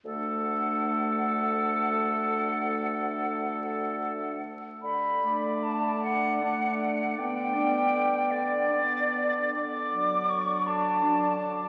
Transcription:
<<
  \new Staff \with { instrumentName = "Flute" } { \time 6/8 \key d \major \tempo 4. = 51 fis''2.~ | fis''2~ fis''8 r8 | b''4 a''8 fis''4. | g''4. d''4. |
d'''4 cis'''8 a''4 r8 | }
  \new Staff \with { instrumentName = "Oboe" } { \time 6/8 \key d \major a'2.~ | a'2~ a'8 r8 | r8 d''4. d''4 | d''8 d''4. d''4 |
r8 d''4. d''4 | }
  \new Staff \with { instrumentName = "Clarinet" } { \time 6/8 \key d \major d'2.~ | d'2~ d'8 r8 | r8 d'4. d'4 | d'8 d'4. d'4 |
r8 d'4. d'4 | }
  \new Staff \with { instrumentName = "French horn" } { \time 6/8 \key d \major a2.~ | a2~ a8 r8 | r8 a4. a4 | b8 b4. b4 |
r8 fis4. fis4 | }
  \new Staff \with { instrumentName = "Bassoon" } { \clef bass \time 6/8 \key d \major d,2.~ | d,2~ d,8 r8 | d4. d4. | d4. d4. |
d4. d4. | }
>>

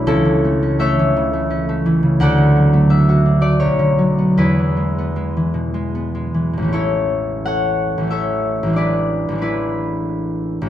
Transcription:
<<
  \new Staff \with { instrumentName = "Harp" } { \time 3/4 \key a \major \tempo 4 = 85 << { <a' e''>4 e''2 | fis''4 e''8. d''16 cis''4 | b'2. | cis''4 fis''4 e''4 |
d''4 b'2 | } \\ { <cis' e'>4 <a' cis''>2 | <a' d''>2. | <e' gis'>2. | <e' a'>4 <a' cis''>4 <a' cis''>4 |
<gis' b'>4 <e' gis'>2 | } >> }
  \new Staff \with { instrumentName = "Harp" } { \clef bass \time 3/4 \key a \major cis,16 e16 a16 cis'16 a16 e16 cis16 a16 cis'16 a16 e16 cis16 | d,16 d16 fis16 a16 d'16 fis'16 d'16 a16 b,,16 d16 fis16 b16 | e,16 e16 gis16 b16 gis16 e16 b,16 gis16 b16 gis16 e16 b,16 | <a,, e a cis'>2 <a,, e a cis'>4 |
<a,, e gis d'>4 <a,, e gis d'>2 | }
>>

